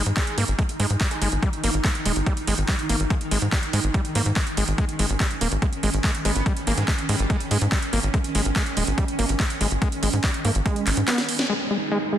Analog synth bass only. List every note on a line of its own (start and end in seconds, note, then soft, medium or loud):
0.06 0.12 G#2 medium
0.38 0.44 G#2 loud
0.48 0.54 G#1 medium
0.80 0.86 G#2 medium
0.90 0.96 G#2 medium
1.22 1.28 G#1 medium
1.32 1.38 G#1 medium
1.64 1.70 G#1 medium
1.74 1.80 G#1 medium
2.06 2.12 D#1 medium
2.16 2.22 G#1 medium
2.47 2.54 G#1 loud
2.58 2.64 G#1 medium
2.89 2.95 G#1 medium
3.00 3.06 G#1 medium
3.31 3.37 G#1 medium
3.42 3.48 G#2 medium
3.73 3.79 G#2 medium
3.84 3.90 G#1 medium
4.15 4.21 G#2 loud
4.26 4.32 G#2 medium
4.57 4.63 G#1 medium
4.68 4.74 G#1 medium
4.99 5.05 G#1 medium
5.10 5.16 G#1 medium
5.41 5.47 D#1 medium
5.52 5.58 G#1 medium
5.83 5.89 G#1 medium
5.94 6.00 G#1 medium
6.25 6.31 G#1 medium
6.36 6.42 G#1 medium
6.67 6.73 G#1 medium
6.78 6.84 G#2 medium
7.09 7.15 G#2 loud
7.19 7.26 G#1 medium
7.51 7.57 G#2 loud
7.61 7.67 G#2 medium
7.93 7.99 G#1 medium
8.03 8.09 G#1 medium
8.35 8.41 G#1 medium
8.45 8.51 G#1 medium
8.77 8.83 D#1 loud
8.87 8.93 G#1 medium
9.19 9.25 G#1 loud
9.29 9.35 G#1 medium
9.61 9.67 G#1 loud
9.71 9.77 G#1 medium
10.03 10.09 G#1 medium
10.13 10.19 G#2 medium
10.45 10.51 G#2 medium
10.55 10.61 G#1 medium
10.87 10.93 G#1 loud
10.97 11.03 G#2 medium